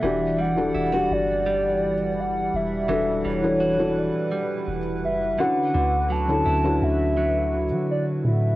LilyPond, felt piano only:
\new Staff \with { instrumentName = "Felt piano" } { \time 4/4 \key e \dorian \tempo 4 = 84 <e d' fis' g'>8 r16 <e d' fis' a'>16 r16 <e d' fis' g'>4. r4 r16 | <e d' fis' a'>8 r16 <e d' fis' a'>16 r16 <e d' fis' a'>4. r8. <d cis' e' fis'>8~ | <d cis' e' fis'>8 r16 <d cis' e' a'>16 r16 <d cis' e' fis'>4. r4 r16 | }